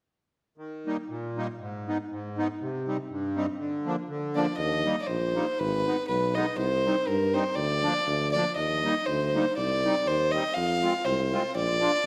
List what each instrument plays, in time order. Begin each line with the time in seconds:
0.58 accordion D#3
0.87 accordion G3 A#3 D#4
1.09 accordion A#2
1.37 accordion G3 A#3 D#4
1.60 accordion G#2
1.88 accordion G#3 B3 D#4
2.11 accordion G#2
2.38 accordion G#3 B3 D#4
2.62 accordion C3
2.87 accordion G3 C4 D#4
3.10 accordion G2
3.36 accordion G3 C4 D#4
3.59 accordion D3
3.86 accordion F3 A#3 D4
4.09 accordion D3
4.36 accordion F3 A#3 D4, fiddle D5
4.57 tuba D#2, fiddle D#5
4.85 accordion G3 A#3 D#4
5.02 fiddle D5
5.07 tuba A#1, fiddle C5
5.35 accordion G3 A#3 D#4
5.59 tuba G#1, fiddle B4
5.86 accordion G#3 B3 D#4
6.08 tuba B1, fiddle B4
6.35 accordion G#3 B3 D#4, fiddle D#5
6.57 tuba C2, fiddle C5
6.86 accordion G3 C4 D#4
7.07 tuba G2, fiddle A#4
7.34 accordion G3 C4 D#4, fiddle C5
7.56 tuba D2, fiddle D5
7.83 accordion F3 A#3 D4
8.06 tuba D2
8.32 accordion F3 A#3 D4, fiddle D5
8.56 tuba D#2, fiddle D#5
8.84 accordion G3 A#3 D#4
9.06 tuba D2, fiddle C5
9.35 accordion G3 A#3 D#4
9.57 tuba C2, fiddle D5
9.85 accordion G3 C4 D#4
10.07 tuba D#2, fiddle C5
10.31 accordion G3 C4 D#4, fiddle D#5
10.54 tuba F2, fiddle F5
10.83 accordion G#3 C4 F4
11.05 tuba C2, fiddle C5
11.32 accordion G#3 C4 F4
11.55 tuba A#1, fiddle D5
11.80 accordion A#3 D4 F4